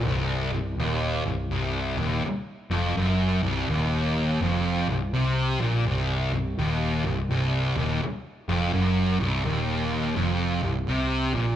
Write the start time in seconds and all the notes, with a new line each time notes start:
0.06 C1 C2
0.52 C1 C2
0.78 D#1 D#2
1.25 C1 C2
1.51 C1 C2
1.97 D#1 D#2
2.23 muted picked electric bass stroke, muted distorted electric guitar stroke
2.70 F1 F2
2.96 F#1 F#2
3.43 C1 C2
3.68 D#1 D#2
4.40 F1 F2
4.88 C1 C2
5.13 C2 C3
5.60 A#1 A#2
5.85 C1 C2
6.32 C1 C2
6.58 D#1 D#2
7.04 C1 C2
7.29 C1 C2
7.77 D#1 D#2
8.02 muted distorted electric guitar stroke, muted picked electric bass stroke
8.48 F1 F2
8.73 F#1 F#2
9.20 C1 C2
9.45 D#1 D#2
10.16 F1 F2
10.63 C1 C2
10.89 C2 C3
11.34 A#1 A#2